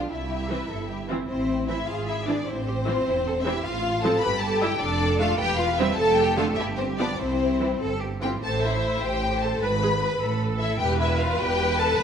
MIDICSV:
0, 0, Header, 1, 6, 480
1, 0, Start_track
1, 0, Key_signature, 0, "major"
1, 0, Tempo, 391389
1, 137, Time_signature, 6, 3, 24, 8
1, 7335, Tempo, 406780
1, 10221, Key_signature, 0, "minor"
1, 10695, Tempo, 394737
1, 14591, End_track
2, 0, Start_track
2, 0, Title_t, "Violin section"
2, 0, Program_c, 0, 48
2, 129, Note_on_c, 0, 76, 83
2, 1320, Note_off_c, 0, 76, 0
2, 1589, Note_on_c, 0, 72, 89
2, 2038, Note_off_c, 0, 72, 0
2, 2073, Note_on_c, 0, 76, 81
2, 2309, Note_off_c, 0, 76, 0
2, 2309, Note_on_c, 0, 77, 92
2, 2537, Note_on_c, 0, 76, 89
2, 2552, Note_off_c, 0, 77, 0
2, 2781, Note_off_c, 0, 76, 0
2, 2793, Note_on_c, 0, 74, 89
2, 3034, Note_off_c, 0, 74, 0
2, 3043, Note_on_c, 0, 72, 100
2, 4228, Note_on_c, 0, 76, 100
2, 4238, Note_off_c, 0, 72, 0
2, 4469, Note_off_c, 0, 76, 0
2, 4473, Note_on_c, 0, 77, 109
2, 4937, Note_off_c, 0, 77, 0
2, 4941, Note_on_c, 0, 81, 106
2, 5175, Note_on_c, 0, 83, 122
2, 5180, Note_off_c, 0, 81, 0
2, 5405, Note_on_c, 0, 81, 109
2, 5416, Note_off_c, 0, 83, 0
2, 5646, Note_on_c, 0, 79, 111
2, 5650, Note_off_c, 0, 81, 0
2, 5887, Note_on_c, 0, 74, 122
2, 5890, Note_off_c, 0, 79, 0
2, 6371, Note_off_c, 0, 74, 0
2, 6379, Note_on_c, 0, 77, 109
2, 6608, Note_on_c, 0, 79, 120
2, 6613, Note_off_c, 0, 77, 0
2, 6842, Note_on_c, 0, 77, 115
2, 6847, Note_off_c, 0, 79, 0
2, 7088, Note_off_c, 0, 77, 0
2, 7089, Note_on_c, 0, 76, 110
2, 7319, Note_on_c, 0, 81, 122
2, 7333, Note_off_c, 0, 76, 0
2, 7547, Note_on_c, 0, 79, 110
2, 7561, Note_off_c, 0, 81, 0
2, 7793, Note_off_c, 0, 79, 0
2, 7804, Note_on_c, 0, 77, 92
2, 7898, Note_off_c, 0, 77, 0
2, 8018, Note_on_c, 0, 76, 114
2, 8112, Note_off_c, 0, 76, 0
2, 8273, Note_on_c, 0, 72, 97
2, 8367, Note_off_c, 0, 72, 0
2, 8512, Note_on_c, 0, 74, 98
2, 8755, Note_off_c, 0, 74, 0
2, 8767, Note_on_c, 0, 72, 97
2, 9494, Note_off_c, 0, 72, 0
2, 9981, Note_on_c, 0, 79, 93
2, 10076, Note_off_c, 0, 79, 0
2, 10235, Note_on_c, 0, 81, 110
2, 10456, Note_on_c, 0, 76, 101
2, 10461, Note_off_c, 0, 81, 0
2, 10927, Note_on_c, 0, 79, 116
2, 10936, Note_off_c, 0, 76, 0
2, 11405, Note_on_c, 0, 81, 98
2, 11413, Note_off_c, 0, 79, 0
2, 11650, Note_off_c, 0, 81, 0
2, 11660, Note_on_c, 0, 83, 106
2, 12601, Note_off_c, 0, 83, 0
2, 12849, Note_on_c, 0, 76, 97
2, 13078, Note_on_c, 0, 79, 114
2, 13080, Note_off_c, 0, 76, 0
2, 13175, Note_off_c, 0, 79, 0
2, 13341, Note_on_c, 0, 76, 105
2, 13569, Note_on_c, 0, 77, 106
2, 13580, Note_off_c, 0, 76, 0
2, 13811, Note_on_c, 0, 79, 127
2, 13817, Note_off_c, 0, 77, 0
2, 14288, Note_on_c, 0, 81, 127
2, 14291, Note_off_c, 0, 79, 0
2, 14526, Note_on_c, 0, 83, 127
2, 14530, Note_off_c, 0, 81, 0
2, 14591, Note_off_c, 0, 83, 0
2, 14591, End_track
3, 0, Start_track
3, 0, Title_t, "Cello section"
3, 0, Program_c, 1, 48
3, 0, Note_on_c, 1, 62, 63
3, 131, Note_off_c, 1, 62, 0
3, 132, Note_on_c, 1, 64, 72
3, 364, Note_on_c, 1, 67, 72
3, 377, Note_off_c, 1, 64, 0
3, 614, Note_off_c, 1, 67, 0
3, 617, Note_on_c, 1, 71, 71
3, 856, Note_on_c, 1, 69, 64
3, 862, Note_off_c, 1, 71, 0
3, 1090, Note_on_c, 1, 67, 61
3, 1103, Note_off_c, 1, 69, 0
3, 1330, Note_on_c, 1, 65, 66
3, 1335, Note_off_c, 1, 67, 0
3, 1428, Note_off_c, 1, 65, 0
3, 1580, Note_on_c, 1, 64, 75
3, 2293, Note_off_c, 1, 64, 0
3, 2298, Note_on_c, 1, 68, 71
3, 3012, Note_off_c, 1, 68, 0
3, 3033, Note_on_c, 1, 64, 80
3, 3129, Note_off_c, 1, 64, 0
3, 3275, Note_on_c, 1, 67, 79
3, 3371, Note_off_c, 1, 67, 0
3, 3526, Note_on_c, 1, 65, 64
3, 3756, Note_off_c, 1, 65, 0
3, 3769, Note_on_c, 1, 64, 81
3, 3862, Note_off_c, 1, 64, 0
3, 4011, Note_on_c, 1, 69, 82
3, 4103, Note_off_c, 1, 69, 0
3, 4263, Note_on_c, 1, 67, 83
3, 4482, Note_off_c, 1, 67, 0
3, 4497, Note_on_c, 1, 65, 80
3, 5181, Note_off_c, 1, 65, 0
3, 5186, Note_on_c, 1, 67, 88
3, 5883, Note_off_c, 1, 67, 0
3, 5899, Note_on_c, 1, 69, 99
3, 6603, Note_off_c, 1, 69, 0
3, 6615, Note_on_c, 1, 71, 93
3, 7336, Note_off_c, 1, 71, 0
3, 7337, Note_on_c, 1, 69, 97
3, 8027, Note_off_c, 1, 69, 0
3, 8042, Note_on_c, 1, 67, 86
3, 8765, Note_off_c, 1, 67, 0
3, 8770, Note_on_c, 1, 64, 74
3, 9433, Note_off_c, 1, 64, 0
3, 9486, Note_on_c, 1, 69, 102
3, 9715, Note_off_c, 1, 69, 0
3, 9737, Note_on_c, 1, 67, 79
3, 9977, Note_on_c, 1, 65, 66
3, 9980, Note_off_c, 1, 67, 0
3, 10214, Note_on_c, 1, 45, 93
3, 10215, Note_off_c, 1, 65, 0
3, 10848, Note_off_c, 1, 45, 0
3, 10935, Note_on_c, 1, 45, 85
3, 11571, Note_off_c, 1, 45, 0
3, 11652, Note_on_c, 1, 44, 93
3, 12289, Note_off_c, 1, 44, 0
3, 12380, Note_on_c, 1, 45, 82
3, 13018, Note_off_c, 1, 45, 0
3, 13096, Note_on_c, 1, 40, 104
3, 13738, Note_off_c, 1, 40, 0
3, 13828, Note_on_c, 1, 40, 97
3, 14453, Note_off_c, 1, 40, 0
3, 14534, Note_on_c, 1, 39, 101
3, 14591, Note_off_c, 1, 39, 0
3, 14591, End_track
4, 0, Start_track
4, 0, Title_t, "Violin section"
4, 0, Program_c, 2, 48
4, 0, Note_on_c, 2, 65, 68
4, 134, Note_off_c, 2, 65, 0
4, 143, Note_on_c, 2, 64, 69
4, 1328, Note_off_c, 2, 64, 0
4, 1592, Note_on_c, 2, 60, 80
4, 2039, Note_off_c, 2, 60, 0
4, 2072, Note_on_c, 2, 64, 73
4, 2313, Note_off_c, 2, 64, 0
4, 2316, Note_on_c, 2, 65, 83
4, 2555, Note_off_c, 2, 65, 0
4, 2556, Note_on_c, 2, 64, 81
4, 2652, Note_off_c, 2, 64, 0
4, 2797, Note_on_c, 2, 62, 77
4, 2893, Note_off_c, 2, 62, 0
4, 3032, Note_on_c, 2, 60, 94
4, 4208, Note_off_c, 2, 60, 0
4, 4240, Note_on_c, 2, 64, 87
4, 4471, Note_on_c, 2, 65, 103
4, 4475, Note_off_c, 2, 64, 0
4, 4931, Note_on_c, 2, 69, 87
4, 4945, Note_off_c, 2, 65, 0
4, 5170, Note_off_c, 2, 69, 0
4, 5187, Note_on_c, 2, 71, 107
4, 5281, Note_off_c, 2, 71, 0
4, 5424, Note_on_c, 2, 69, 98
4, 5655, Note_off_c, 2, 69, 0
4, 5682, Note_on_c, 2, 67, 95
4, 5898, Note_on_c, 2, 62, 103
4, 5908, Note_off_c, 2, 67, 0
4, 6367, Note_off_c, 2, 62, 0
4, 6388, Note_on_c, 2, 65, 92
4, 6617, Note_off_c, 2, 65, 0
4, 6619, Note_on_c, 2, 67, 123
4, 6851, Note_on_c, 2, 65, 95
4, 6852, Note_off_c, 2, 67, 0
4, 6948, Note_off_c, 2, 65, 0
4, 7092, Note_on_c, 2, 64, 89
4, 7189, Note_off_c, 2, 64, 0
4, 7331, Note_on_c, 2, 69, 126
4, 7562, Note_off_c, 2, 69, 0
4, 7578, Note_on_c, 2, 67, 108
4, 7803, Note_on_c, 2, 65, 85
4, 7808, Note_off_c, 2, 67, 0
4, 7897, Note_off_c, 2, 65, 0
4, 8050, Note_on_c, 2, 64, 94
4, 8144, Note_off_c, 2, 64, 0
4, 8282, Note_on_c, 2, 60, 86
4, 8376, Note_off_c, 2, 60, 0
4, 8535, Note_on_c, 2, 62, 81
4, 8629, Note_off_c, 2, 62, 0
4, 8785, Note_on_c, 2, 60, 86
4, 9488, Note_off_c, 2, 60, 0
4, 9998, Note_on_c, 2, 67, 87
4, 10091, Note_off_c, 2, 67, 0
4, 10228, Note_on_c, 2, 69, 104
4, 10458, Note_off_c, 2, 69, 0
4, 10491, Note_on_c, 2, 64, 93
4, 10945, Note_on_c, 2, 67, 100
4, 10954, Note_off_c, 2, 64, 0
4, 11422, Note_off_c, 2, 67, 0
4, 11435, Note_on_c, 2, 69, 89
4, 11666, Note_off_c, 2, 69, 0
4, 11670, Note_on_c, 2, 71, 104
4, 12625, Note_off_c, 2, 71, 0
4, 12855, Note_on_c, 2, 64, 93
4, 13083, Note_off_c, 2, 64, 0
4, 13104, Note_on_c, 2, 67, 109
4, 13342, Note_off_c, 2, 67, 0
4, 13352, Note_on_c, 2, 64, 91
4, 13584, Note_on_c, 2, 65, 95
4, 13585, Note_off_c, 2, 64, 0
4, 13814, Note_on_c, 2, 67, 111
4, 13825, Note_off_c, 2, 65, 0
4, 14293, Note_off_c, 2, 67, 0
4, 14294, Note_on_c, 2, 69, 118
4, 14521, Note_on_c, 2, 71, 124
4, 14533, Note_off_c, 2, 69, 0
4, 14591, Note_off_c, 2, 71, 0
4, 14591, End_track
5, 0, Start_track
5, 0, Title_t, "Viola section"
5, 0, Program_c, 3, 48
5, 612, Note_on_c, 3, 52, 71
5, 614, Note_on_c, 3, 60, 66
5, 730, Note_off_c, 3, 52, 0
5, 730, Note_off_c, 3, 60, 0
5, 1346, Note_on_c, 3, 60, 74
5, 1352, Note_on_c, 3, 52, 75
5, 1459, Note_off_c, 3, 60, 0
5, 1463, Note_off_c, 3, 52, 0
5, 2067, Note_on_c, 3, 60, 66
5, 2068, Note_on_c, 3, 52, 65
5, 2181, Note_off_c, 3, 60, 0
5, 2182, Note_off_c, 3, 52, 0
5, 2782, Note_on_c, 3, 52, 75
5, 2783, Note_on_c, 3, 62, 73
5, 2900, Note_off_c, 3, 52, 0
5, 2900, Note_off_c, 3, 62, 0
5, 3509, Note_on_c, 3, 52, 75
5, 3512, Note_on_c, 3, 60, 78
5, 3624, Note_off_c, 3, 52, 0
5, 3625, Note_off_c, 3, 60, 0
5, 4235, Note_on_c, 3, 52, 85
5, 4240, Note_on_c, 3, 60, 79
5, 4345, Note_off_c, 3, 52, 0
5, 4348, Note_off_c, 3, 60, 0
5, 4950, Note_on_c, 3, 53, 88
5, 4951, Note_on_c, 3, 60, 84
5, 5058, Note_off_c, 3, 53, 0
5, 5059, Note_off_c, 3, 60, 0
5, 5660, Note_on_c, 3, 64, 97
5, 5661, Note_on_c, 3, 55, 86
5, 5769, Note_off_c, 3, 64, 0
5, 5770, Note_off_c, 3, 55, 0
5, 6382, Note_on_c, 3, 57, 93
5, 6382, Note_on_c, 3, 62, 82
5, 6490, Note_off_c, 3, 57, 0
5, 6491, Note_off_c, 3, 62, 0
5, 7097, Note_on_c, 3, 60, 99
5, 7102, Note_on_c, 3, 55, 92
5, 7208, Note_off_c, 3, 60, 0
5, 7211, Note_off_c, 3, 55, 0
5, 7799, Note_on_c, 3, 57, 92
5, 7805, Note_on_c, 3, 50, 85
5, 7911, Note_off_c, 3, 57, 0
5, 7914, Note_off_c, 3, 50, 0
5, 8525, Note_on_c, 3, 53, 80
5, 8527, Note_on_c, 3, 59, 80
5, 8636, Note_off_c, 3, 53, 0
5, 8638, Note_off_c, 3, 59, 0
5, 9245, Note_on_c, 3, 52, 75
5, 9250, Note_on_c, 3, 60, 76
5, 9360, Note_off_c, 3, 52, 0
5, 9362, Note_off_c, 3, 60, 0
5, 9970, Note_on_c, 3, 52, 72
5, 9975, Note_on_c, 3, 60, 75
5, 10087, Note_off_c, 3, 52, 0
5, 10090, Note_off_c, 3, 60, 0
5, 10207, Note_on_c, 3, 72, 97
5, 11601, Note_off_c, 3, 72, 0
5, 11655, Note_on_c, 3, 71, 95
5, 11751, Note_off_c, 3, 71, 0
5, 11895, Note_on_c, 3, 68, 80
5, 11991, Note_off_c, 3, 68, 0
5, 12142, Note_on_c, 3, 71, 90
5, 12375, Note_off_c, 3, 71, 0
5, 12378, Note_on_c, 3, 69, 85
5, 13088, Note_off_c, 3, 69, 0
5, 13104, Note_on_c, 3, 71, 113
5, 14591, Note_off_c, 3, 71, 0
5, 14591, End_track
6, 0, Start_track
6, 0, Title_t, "Double bass section"
6, 0, Program_c, 4, 48
6, 139, Note_on_c, 4, 36, 79
6, 744, Note_off_c, 4, 36, 0
6, 857, Note_on_c, 4, 31, 73
6, 1466, Note_off_c, 4, 31, 0
6, 1588, Note_on_c, 4, 33, 82
6, 2191, Note_off_c, 4, 33, 0
6, 2307, Note_on_c, 4, 32, 73
6, 2911, Note_off_c, 4, 32, 0
6, 3028, Note_on_c, 4, 33, 86
6, 3633, Note_off_c, 4, 33, 0
6, 3753, Note_on_c, 4, 28, 73
6, 4351, Note_off_c, 4, 28, 0
6, 4476, Note_on_c, 4, 33, 92
6, 5066, Note_off_c, 4, 33, 0
6, 5191, Note_on_c, 4, 31, 84
6, 5781, Note_off_c, 4, 31, 0
6, 5896, Note_on_c, 4, 29, 94
6, 6495, Note_off_c, 4, 29, 0
6, 6606, Note_on_c, 4, 28, 86
6, 7210, Note_off_c, 4, 28, 0
6, 7330, Note_on_c, 4, 29, 101
6, 7919, Note_off_c, 4, 29, 0
6, 8035, Note_on_c, 4, 31, 90
6, 8640, Note_off_c, 4, 31, 0
6, 8755, Note_on_c, 4, 36, 89
6, 9366, Note_off_c, 4, 36, 0
6, 9497, Note_on_c, 4, 31, 71
6, 10103, Note_off_c, 4, 31, 0
6, 10223, Note_on_c, 4, 33, 84
6, 10852, Note_off_c, 4, 33, 0
6, 10929, Note_on_c, 4, 33, 86
6, 11568, Note_off_c, 4, 33, 0
6, 11654, Note_on_c, 4, 32, 96
6, 12291, Note_off_c, 4, 32, 0
6, 12369, Note_on_c, 4, 33, 86
6, 13012, Note_off_c, 4, 33, 0
6, 13095, Note_on_c, 4, 28, 92
6, 13738, Note_off_c, 4, 28, 0
6, 13827, Note_on_c, 4, 28, 90
6, 14452, Note_off_c, 4, 28, 0
6, 14530, Note_on_c, 4, 39, 120
6, 14591, Note_off_c, 4, 39, 0
6, 14591, End_track
0, 0, End_of_file